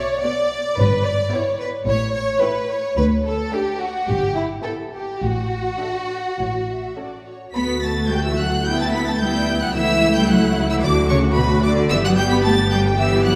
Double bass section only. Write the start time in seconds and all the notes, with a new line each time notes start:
Already playing: B1
0.79 G1
1.87 A1
2.97 D2
4.08 G1
5.22 A1
6.40 A1
7.54 D2
9.75 C#2
10.83 D2
11.91 G1